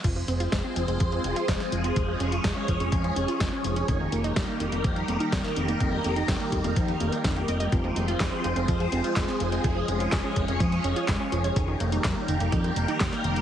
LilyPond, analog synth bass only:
\new Staff \with { instrumentName = "Analog synth bass" } { \clef bass \time 4/4 \key f \minor \tempo 4 = 125 f,,8 f,,8 f,,16 r16 f,,16 f,,16 f,8 f,,16 r16 f,,16 r16 f,,8 | f,,8 f,,8 f,,16 r16 f,,16 f,,16 f,8 f,,16 r16 f,,16 r16 f,,8 | f,,8 f,,8 f,,16 r16 f,,16 f,,16 f,8 f,,16 r16 f,,16 r16 f,,8 | f,,8 f,,8 f,,16 r16 f,,16 f,,16 f,8 f,,16 r16 f,,8 f,,8 |
f,,8 f,,8 f,,16 r16 f,,16 f,,16 f,8 f,,16 r16 f,,16 r16 f,,8 | f,,8 f,,8 f,,16 r16 f,,16 f,,16 f,8 f,,16 r16 f,,16 r16 f,,8 | f,,8 f,,8 f,,16 r16 f,,16 f,,16 f,8 f,,16 r16 f,,16 r16 f,,8 | }